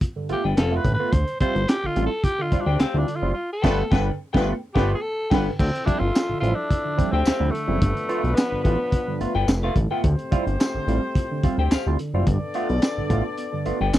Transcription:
0.01 B3 F4, kick, closed hi-hat
0.16 G2 D3
0.29 G1 A3 B3 F4 G4, closed hi-hat
0.44 G1 A4 B4 G5
0.57 F1 A4 B4 F5, snare, clap, closed hi-hat
0.71 A3 B3 F4
0.76 B4
0.84 A1 G2 D3, kick, closed hi-hat
0.94 B4
1.00 A3 B3 F4
1.12 D2 D3 C5, kick, closed hi-hat
1.27 closed hi-hat
1.40 G3 C4 E4 F4 C5, kick, closed hi-hat
1.55 G1 E4 F4, closed hi-hat
1.68 E4 F4 G4, snare, clap, closed hi-hat
1.83 A1 D3 F4
1.96 A1 G3 C4 E4 F4, closed hi-hat
2.06 A4
2.24 E4 F4 G4, kick, closed hi-hat
2.39 D3 F4
2.52 D2 G3 C4 E4 F4, kick, closed hi-hat
2.61 D4
2.66 D2 G4 C5 G5
2.79 D2 C4 G4 C5 F5, snare, clap, closed hi-hat
2.94 D2 G3 C4 D4 E4 F4
3.08 D3, closed hi-hat
3.16 F4
3.22 F#1 G3 C4 E4 F4
3.34 F4
3.53 A4
3.62 G1 F3 A3 B3 D4 F4 A4 B4 G5, kick, snare, crash
3.91 G1 G2 D3 F3 B3 D4 A4 B4 G5, kick, snare
4.33 G1 F3 A3 B3 D4 F4 A4 B4 G5, kick, snare
4.74 G1 F3 A3 B3 D4 F4 G4 A4 B4 G5, kick, snare
4.95 G#4
5.01 A4
5.30 G1 G2 D3 G3 B3 F4 A4 B4 G5, kick, snare, crash
5.59 D2 D3 F3 C4 E4 A4 E5, kick, crash
5.75 closed hi-hat
5.85 F3 G3 C4 D4 E4, kick, closed hi-hat
5.99 G1 C4 E4 F4
6.15 C4 E4, snare, clap, closed hi-hat, tambourine
6.29 A1 D3
6.40 A1 F3 G3 C4 E4 F4, closed hi-hat
6.55 D4
6.71 C4 E4, kick, closed hi-hat
6.85 D3
6.97 D2 F3 G3 C4 E4, kick, closed hi-hat
7.11 D2 C4 G4 C5 G5
7.25 D2 G4 C5 F5, snare, clap, closed hi-hat, tambourine
7.40 D2 F3 G3 C4 E4
7.51 D3 A3
7.55 closed hi-hat
7.67 F#1 F3 G3 C4 E4
7.81 G1 G2 D3 F3 B3 D4 B4, kick, closed hi-hat
7.97 closed hi-hat
8.09 A3 B3 F4, closed hi-hat
8.24 B1 B3 F4, closed hi-hat
8.35 B3 F4, snare, clap, closed hi-hat, tambourine
8.51 A1 G2 D3
8.64 A1 A3 B3 F4, kick, closed hi-hat
8.92 B3 F4, kick, closed hi-hat
9.08 G2 D3
9.20 G1 A3 B3 F4, closed hi-hat
9.35 G1 A4 B4 G5
9.48 F1, snare, clap, closed hi-hat, tambourine
9.63 A3 B3 F4 A4 B4 F5
9.76 A1 G2 D3, kick, closed hi-hat
9.91 A3 B3 F4 A4 B4 G5
10.04 D2 D3 A3 C4 G4 C5, kick, closed hi-hat
10.19 closed hi-hat
10.31 G3 C4 E4 F4, kick, closed hi-hat
10.47 G1 E4 F4, closed hi-hat
10.60 E4 F4, snare, clap, closed hi-hat, tambourine
10.74 A1 D3
10.87 A1 G3 C4 E4 F4, closed hi-hat
11.15 E4 F4, kick, closed hi-hat
11.31 D3
11.43 D2 G3 C4 E4 F4, kick, closed hi-hat
11.58 D2 G4 C5 G5
11.71 D2 G4 C5 F5, snare, clap, closed hi-hat, tambourine
11.86 D2 G3 C4 E4 F4
11.99 D3, closed hi-hat
12.14 F#1 G3 C4 E4 F4
12.27 G1 G2 D3 B3 D4 A4 D5, kick, closed hi-hat
12.54 A3 B3 F4, closed hi-hat
12.69 B1 B3 F4, closed hi-hat
12.82 B3 F4, snare, clap, closed hi-hat, tambourine
12.97 A1 G2 D3
13.10 A1 A3 B3 F4, kick, closed hi-hat
13.38 B3 F4, closed hi-hat
13.52 G2 D3
13.66 G1 A3 B3 F4, closed hi-hat
13.81 G1 A4 B4 G5
13.93 F1, snare, clap, closed hi-hat, tambourine

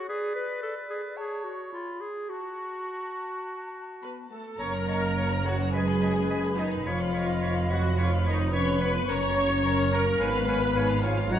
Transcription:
Already playing: C#5
0.09 G#4 B4 D5
0.35 B4
0.63 A4
0.90 G#4
1.16 G#4 C#5 A5
1.44 F#4
1.72 F4 B5
2.01 G#4
2.29 F#4 A5
4.02 B3 B4 B5
4.30 A3 A4 A5
4.59 F#1 F#2 A#3 A#4 C#5 A#5 C#6
4.74 A#5
4.88 C#5 D#5 A#5 C#6
5.04 A#5
5.17 C#5 A#5 C#6
5.33 A#5
5.44 F#3 F#4 C#5 F#5 A#5 C#6
5.60 A#5
5.73 G#3 G#4 B4 D#5 G#5 B5
5.88 B5
6.02 D#5 G#5 B5
6.16 B5
6.30 D#5 G#5 B5
6.44 B5
6.58 D#3 D#4 D#5 G#5 B5
6.72 B5
6.85 F1 F2 F3 F4 C#5 F5 B5 C#6
7.00 B5
7.14 C#5 D#5 B5 C#6
7.29 B5
7.41 C#5 B5 C#6
7.57 B5
7.70 F#3 F#4 C#5 F#5 B5 C#6
7.83 B5
7.97 F3 F4 C#5 F5 B5 C#6
8.12 B5
8.25 D#3 D#4 C#5 D#5 B5 C#6
8.39 B5
8.52 C#4 B4 C#5 B5 C#6
8.66 B5
8.80 B3 B4 C#5 B5 C#6
8.93 B5
9.06 F#1 F#2 C#4 A#4 C#5 A#5 C#6
9.21 A#5
9.36 C#5 A#5 C#6
9.50 A#5
9.63 A#4 C#5 A#5 C#6
9.78 A#5
9.92 A#3 A#4 C#5 A#5 C#6
10.06 A#5
10.20 G#1 G#2 B3 B4 C#5 F5 G#5 B5
10.34 F5
10.48 C#5 F5 G#5
10.61 F5
10.75 B4 C#5 F5 G#5
10.90 F5
11.03 F3 F4 C#5 F5 G#5
11.18 F5
11.30 F#1 F#2 F#3 F#4 C#5 D#5 F#5 A#5

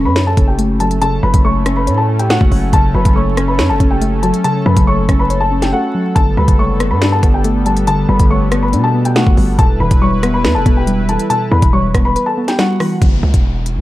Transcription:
Already playing: C#3 F#3 A3 C#4 A4
0.05 F#2 B4 B5
0.16 C#5, finger snap, snare
0.27 A4 A5
0.37 F#1 C#4, kick, closed hi-hat
0.48 G4 G5
0.59 A3, closed hi-hat
0.80 F#3 A4 A5, closed hi-hat
0.91 closed hi-hat
1.01 C#3 A4 A5, closed hi-hat
1.23 F#1 F#3 B4 B5
1.34 F#1, kick, closed hi-hat
1.45 A3 C#5 C#6
1.66 C#4, cross-stick, closed hi-hat
1.77 B4 B5
1.87 A2 C#5, closed hi-hat
1.98 A4 A5
2.09 C#4
2.19 G4 G5, closed hi-hat
2.30 A3 F#4 F#5, finger snap, snare
2.41 F#1, kick
2.52 F#1 F#3, open hi-hat
2.73 F#1 C#3 A4 A5, kick, closed hi-hat
2.94 F#1 F#3 B4 B5
3.05 F#1, kick, closed hi-hat
3.16 A3 C#5 C#6
3.37 C#4, cross-stick, closed hi-hat
3.48 B4 B5
3.58 F#2 C#5, finger snap, snare
3.69 F#1 A4 A5
3.80 F#1 C#4, kick, closed hi-hat
3.91 G4 G5
4.02 A3, closed hi-hat
4.23 F#3 A4 A5, closed hi-hat
4.34 closed hi-hat
4.44 C#3 A4 A5, closed hi-hat
4.66 F#2 F#3 B4 B5
4.77 F#1, kick, closed hi-hat
4.87 A3 C#5 C#6
5.09 F#1 C#4, kick, cross-stick, closed hi-hat
5.19 B4 B5
5.30 C#5, closed hi-hat
5.41 A4 A5
5.52 C#4
5.62 G4 G5, snare, closed hi-hat
5.73 A3 F#4 F#5
5.95 F#3
6.16 G1 D3 G3 B3 A4 A5, kick, closed hi-hat
6.37 D2 G3 B4 B5
6.48 F#1, kick, closed hi-hat
6.59 A3 C#5 C#6
6.80 B3, cross-stick, closed hi-hat
6.91 G2 B4 B5
7.02 D4, finger snap, snare
7.12 A4 A5
7.23 G1 B3, kick, closed hi-hat
7.34 G4 G5
7.44 A3, closed hi-hat
7.66 G3 A4 A5, closed hi-hat
7.77 closed hi-hat
7.87 D3 A4 A5, closed hi-hat
8.09 G1 G3 B4 B5
8.19 G1, kick, closed hi-hat
8.30 A3 C#5 C#6
8.52 B3, cross-stick, closed hi-hat
8.63 B4 B5
8.73 B2 D4, closed hi-hat
8.84 A4 A5
8.95 B3
9.05 G4 G5, closed hi-hat
9.16 A3 F#4 F#5, finger snap, snare
9.27 G1, kick
9.37 G1 G3, open hi-hat
9.59 E1 B2 E4 A4 B4 A5, kick, closed hi-hat
9.80 E1 E3 B4 B5
9.91 E1, kick, closed hi-hat
10.01 G3 C#5 C#6
10.23 B3, cross-stick, closed hi-hat
10.34 B4 B5
10.44 E2 B4, finger snap, snare
10.55 E1 A4 A5
10.66 E1 B3, kick, closed hi-hat
10.77 G4 G5
10.87 G3, closed hi-hat
11.09 E3 A4 A5, closed hi-hat
11.20 closed hi-hat
11.30 B2 A4 A5, closed hi-hat
11.51 E2 E3 B4 B5
11.62 E1, kick, closed hi-hat
11.73 G3 C#5 C#6
11.94 E1 B3, kick, cross-stick, closed hi-hat
12.05 B4 B5
12.16 B4, closed hi-hat
12.26 A4 A5
12.37 B3
12.48 G4 G5, snare, closed hi-hat
12.59 G3 F#4 F#5, finger snap, snare
12.80 E3, cross-stick, open hi-hat
13.02 F#1, kick, closed hi-hat, downlifter
13.23 C#2
13.34 E1, kick, closed hi-hat
13.66 closed hi-hat
13.77 F#2

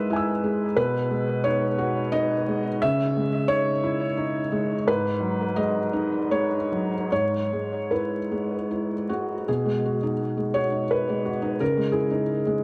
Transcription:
Already playing: G#2 G#3 E4 B4 E5
0.10 E4 E5 G#5
0.16 E6
0.44 G#3
0.76 B2 B4
1.11 G#3
1.44 D#4 C#5
1.78 F#4
2.12 D#4 D#5
2.48 G#3
2.82 C#3 E5
3.17 G#3
3.48 D#4 C#5
3.84 E4
4.17 D#4
4.52 G#3
4.88 G#2 B4
5.20 F#3
5.56 G#3 D#5
5.93 D#4
6.31 G#3 C#5
6.72 F#3
7.12 G#2 C#5
7.53 G#3
7.91 E4 B4
8.31 G#3
8.71 E4
9.09 G#3 F#4
9.48 B2 G#4
9.66 G#3
9.85 F#4
10.03 D#4
10.37 G#3
10.54 F#4 C#5
10.72 D#4
10.91 B4
11.09 G#3
11.25 F#4
11.42 D#4
11.60 C#3 A#4
11.77 G#3
11.92 E4 G#4
12.11 D#4
12.47 G#3

